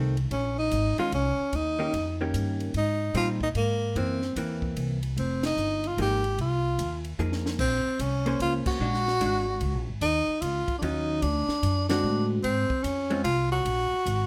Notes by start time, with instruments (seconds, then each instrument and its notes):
Already playing: upright bass C2, hollow-body jazz guitar D#3 A3 C4
0.17 ride
0.31 upright bass A#1, tenor saxophone C#4, kick, ride
0.58 tenor saxophone D#4
0.71 upright bass G#1, kick, hi-hat pedal, ride
0.98 hollow-body jazz guitar D#3 G#3 C#4, tenor saxophone F4, muted upright bass stroke, ride
1.12 upright bass C2, tenor saxophone C#4, kick, ride
1.38 muted upright bass stroke
1.53 upright bass D#2, tenor saxophone D#4, kick, ride
1.79 hollow-body jazz guitar D#3 A#3 C#4 G4
1.93 upright bass F2, kick, ride
2.21 hollow-body jazz guitar D#3 A#3 C#4 G4
2.34 upright bass G2, kick, hi-hat pedal, ride
2.60 ride
2.74 upright bass G#2, tenor saxophone D#4, kick, ride
3.14 upright bass A#2, hollow-body jazz guitar G3 C4 D#4, tenor saxophone F4, kick, hi-hat pedal, ride
3.41 tenor saxophone D#4, kick
3.55 upright bass G#2, tenor saxophone A#3, kick, ride
3.95 upright bass F#2, hollow-body jazz guitar E3 A#3 C4, tenor saxophone C4, kick, ride
4.22 snare
4.36 upright bass E2, hollow-body jazz guitar E3 A#3 C4, kick, hi-hat pedal, ride
4.62 kick
4.76 upright bass C2, kick, ride
5.03 ride
5.17 upright bass F1, tenor saxophone C4, kick, ride
5.43 tenor saxophone D#4, snare, ride
5.56 upright bass G1, hi-hat pedal
5.84 tenor saxophone F4, ride
5.97 upright bass G#1, hollow-body jazz guitar F3 A#3 D#4 G#4, kick, ride
6.02 tenor saxophone G4
6.24 ride
6.38 upright bass C2, tenor saxophone F4, kick, ride
6.78 upright bass D#2, kick, hi-hat pedal, ride
7.05 ride
7.19 upright bass F2, hollow-body jazz guitar F3 A#3 D#4 G#4, hi-hat pedal
7.32 snare
7.46 snare
7.58 upright bass A#1, tenor saxophone C4, kick, crash
7.85 muted upright bass stroke
7.99 upright bass C2, tenor saxophone C#4, kick, hi-hat pedal, ride
8.26 hollow-body jazz guitar A#3 C#4 G#4 C5, ride
8.40 upright bass C#2, tenor saxophone F4, kick, ride
8.66 tenor saxophone F#4, muted upright bass stroke, kick, crash
8.79 upright bass A#1, hollow-body jazz guitar G#3 D4 F#4
8.94 snare
9.08 snare
9.20 upright bass G#1, hollow-body jazz guitar G#3 D4 F#4, kick, hi-hat pedal, ride
9.61 upright bass C#2, kick, ride
9.74 upright bass A#1
9.87 upright bass G#1
10.01 upright bass D#2, tenor saxophone D#4, kick, ride
10.28 muted upright bass stroke
10.41 upright bass C#2, tenor saxophone F4, kick, hi-hat pedal, ride
10.67 muted upright bass stroke, kick, ride
10.78 upright bass D#2, tenor saxophone D4 D#4, kick, ride
10.83 hollow-body jazz guitar D#3 F#3 C#4 F4
11.22 upright bass D2, tenor saxophone D4, kick, ride
11.48 muted upright bass stroke, snare
11.62 upright bass F#2, kick, hi-hat pedal, ride
11.89 hollow-body jazz guitar D3 G#3 C4 F#4, tenor saxophone D4, snare, ride
12.03 upright bass A2
12.43 upright bass G#2, tenor saxophone C4, kick, ride
12.70 muted upright bass stroke, kick
12.83 upright bass F2, tenor saxophone C#4, kick, hi-hat pedal, ride
13.10 hollow-body jazz guitar G#3 C4 F4, ride
13.24 upright bass C2, tenor saxophone F4, kick, ride
13.52 tenor saxophone F#4
13.65 upright bass A#1, kick, ride
13.91 muted upright bass stroke
14.05 upright bass G#1, kick, hi-hat pedal, ride